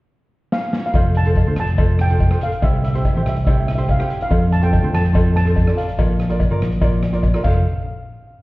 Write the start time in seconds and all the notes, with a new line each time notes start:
0.52 F5, snare
0.73 snare
0.86 F5
0.93 F1 F4 A4 C5, kick, closed hi-hat, cowbell
1.15 A5, closed hi-hat
1.25 F4 A4 C5, closed hi-hat
1.35 kick, closed hi-hat, cowbell
1.47 D2 F4 A4 C5
1.56 F1 A5, cross-stick, closed hi-hat
1.67 closed hi-hat
1.78 F4 A4 C5, kick, closed hi-hat, cowbell
1.99 G5, cross-stick, closed hi-hat
2.10 F4 A4 C5, closed hi-hat
2.20 kick, closed hi-hat, cowbell
2.30 F4 A4 C5, cross-stick
2.41 F5, closed hi-hat
2.52 closed hi-hat
2.62 C2 E4 G4 C5 E5, kick, closed hi-hat, cowbell
2.84 E5, closed hi-hat
2.91 E4 G4 E5
2.95 C5 E5, closed hi-hat
3.05 E5, kick, closed hi-hat, cowbell
3.15 A1 E4 G4 C5 E5
3.23 C2 E5, cross-stick, closed hi-hat
3.29 E5
3.36 E5, closed hi-hat
3.45 E4 G4 C5 E5, kick, closed hi-hat, cowbell
3.52 E5
3.60 E5
3.67 E5, cross-stick, closed hi-hat
3.75 E4 G4 C5 E5, closed hi-hat
3.88 F5, kick, closed hi-hat, cowbell
3.99 E4 G4 C5, cross-stick
4.10 closed hi-hat
4.21 F5, closed hi-hat
4.29 F2 F4 A4 C5, kick, closed hi-hat, cowbell
4.52 A5, closed hi-hat
4.61 F4 A4 C5 G5, closed hi-hat
4.73 kick, closed hi-hat, cowbell
4.82 D2 F4 A4 C5
4.93 F2 A5, cross-stick, closed hi-hat
5.05 closed hi-hat
5.13 F4 A4 C5, kick, closed hi-hat, cowbell
5.36 A5, cross-stick, closed hi-hat
5.45 F4 A4 C5, closed hi-hat
5.56 kick, closed hi-hat, cowbell
5.66 F4 A4 D5, cross-stick
5.77 F5, closed hi-hat
5.89 closed hi-hat
5.98 A#1 F4 A#4 D5, kick, closed hi-hat, cowbell
6.20 cross-stick, closed hi-hat
6.29 F4 A#4 D5, closed hi-hat
6.40 kick, closed hi-hat, cowbell
6.50 G1 F4 A#4 D5
6.61 A#1, cross-stick, closed hi-hat
6.72 closed hi-hat
6.81 F4 A#4 D5, kick, closed hi-hat, cowbell
7.03 cross-stick, closed hi-hat
7.13 F4 A#4 D5, closed hi-hat
7.23 kick, closed hi-hat, cowbell
7.34 F4 A#4 D5, cross-stick
7.44 F1 F4 A4 C5 F5, kick, crash, cowbell